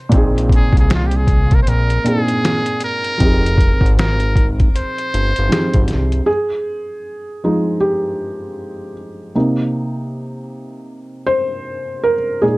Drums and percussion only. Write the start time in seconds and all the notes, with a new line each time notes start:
0.12 kick, closed hi-hat
0.38 closed hi-hat
0.49 kick, closed hi-hat
0.73 kick
0.77 closed hi-hat
0.90 snare, closed hi-hat
1.11 closed hi-hat
1.27 kick, closed hi-hat
1.51 kick, closed hi-hat
1.67 closed hi-hat
1.90 closed hi-hat
2.06 closed hi-hat
2.28 closed hi-hat
2.45 snare, closed hi-hat
2.66 closed hi-hat
2.80 closed hi-hat
3.04 closed hi-hat
3.20 kick, closed hi-hat
3.46 closed hi-hat
3.58 kick, closed hi-hat
3.81 kick
3.86 closed hi-hat
3.99 snare, closed hi-hat
4.20 closed hi-hat
4.36 kick, closed hi-hat
4.60 kick, closed hi-hat
4.76 closed hi-hat
4.98 closed hi-hat
5.14 closed hi-hat
5.36 closed hi-hat
5.52 snare, closed hi-hat
5.74 kick, closed hi-hat
5.88 snare, closed hi-hat
6.12 closed hi-hat